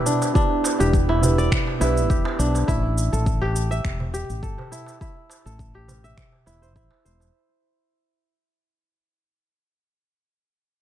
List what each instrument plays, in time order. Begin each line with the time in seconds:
Already playing: felt piano B3 D4 E4 G4 B4, kora E4 G4 D5
0.06 kora D4, cabasa
0.22 darbuka ka, cabasa
0.33 felt piano B3 D4 E4 G4 B4, kora D4, kick, cabasa
0.64 darbuka tek, cabasa
0.78 fretless electric bass E1, felt piano B3 D4 E4 G4 B4, kora G4, cabasa
0.93 kick, cabasa
1.09 kora E4, darbuka ka, darbuka tek
1.21 felt piano B3 D4 E4 G4 B4, darbuka dum, cabasa
1.38 kora D5, cabasa
1.51 finger snap, kick, darbuka dum, cabasa
1.67 darbuka ka
1.79 fretless electric bass B1, felt piano B3 D4 E4 G4 B4, kora E4, darbuka ka, cabasa
1.97 cabasa
2.10 fretless electric bass E1, kora G4, kick, cabasa
2.25 darbuka tek
2.39 fretless electric bass B1, kora D4, cabasa
2.55 darbuka ka, cabasa
2.68 fretless electric bass A1, kora E4, kick, cabasa
2.98 cabasa
3.13 fretless electric bass A1, kora A4, cabasa
3.26 kick, cabasa
3.41 kora G4, darbuka ka, darbuka tek
3.56 cabasa
3.71 kora E5, cabasa
3.84 fretless electric bass E1, finger snap, kick, cabasa
4.00 darbuka dum
4.14 kora G4, cabasa
4.30 fretless electric bass A1, cabasa
4.43 fretless electric bass G1, kora A4, kick, cabasa
4.58 darbuka ka, darbuka dum
4.72 kora E4, cabasa
4.86 darbuka ka, cabasa
5.01 kora E4, kick, cabasa
5.30 darbuka tek, cabasa
5.46 fretless electric bass A1, kora A4, cabasa
5.59 kick, cabasa
5.74 kora G4, darbuka ka, darbuka tek
5.88 darbuka dum, cabasa
6.04 kora E5, cabasa
6.17 finger snap, kick, darbuka dum, cabasa
6.32 darbuka ka
6.46 fretless electric bass E1, kora E4, darbuka ka, cabasa
6.62 kora C5, cabasa
6.76 fretless electric bass A1, kora E4, kick, cabasa
6.91 darbuka tek
7.05 fretless electric bass E1, kora C5, cabasa
7.20 darbuka ka, cabasa